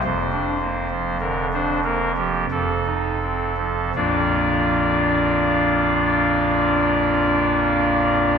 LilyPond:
<<
  \new Staff \with { instrumentName = "Pipe organ" } { \time 3/4 \key bes \major \tempo 4 = 40 c''4 bes'16 c''16 bes'16 g'16 a'4 | <bes,, f, f bes d' f' d''>2. | }
  \new Staff \with { instrumentName = "Pipe organ" } { \clef bass \time 3/4 \key bes \major << { f,16 d'16 bes16 f16 d16 d'16 bes16 f16 f,16 ees'16 c'16 f16 | r2. | } \\ { f,,2 f,,4 | r2. | } >> }
>>